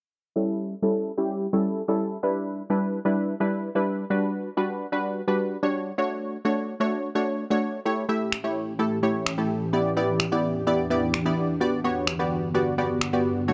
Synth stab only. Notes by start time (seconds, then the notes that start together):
0.36 G3 C#4 E4 A4
0.82 G3 C#4 E4 A4
1.18 G3 C#4 E4 G4
1.53 G3 C#4 E4 A4
1.88 G3 C#4 E4 A4
2.23 G3 D4 E4 B4
2.70 G3 D4 E4 B4
3.05 G3 D4 E4 B4
3.40 G3 D4 E4 B4
3.75 G3 D4 E4 B4
4.10 G3 D4 F#4 B4
4.57 G3 D4 F#4 B4
4.92 G3 D4 F#4 B4
5.28 G3 D4 F#4 B4
5.63 G3 D4 F#4 C#5
5.98 A3 D4 F#4 C#5
6.45 A3 D4 F#4 C#5
6.80 A3 D4 F#4 C#5
7.15 A3 D4 F#4 C#5
7.50 A3 D4 F#4 C#5
7.85 A3 E4 G4 C#5
8.09 A3 E4 G4 E5
8.44 A3 E4 G4 C#5
8.79 A3 E4 G4 A4
9.03 A3 E4 G4 C#5
9.38 A3 E4 G4 A4
9.73 B3 E4 G4 D5
9.97 B3 E4 G4 D5
10.32 B3 E4 G4 D5
10.67 B3 E4 G4 D5
10.90 B3 E4 G4 D5
11.26 B3 E4 G4 D5
11.61 B3 F#4 G4 D5
11.84 B3 F#4 G4 C#5
12.19 B3 F#4 G4 D5
12.54 B3 F#4 G4 D5
12.78 B3 F#4 G4 D5
13.13 B3 F#4 G4 D5
13.48 A3 D4 F#4 C#5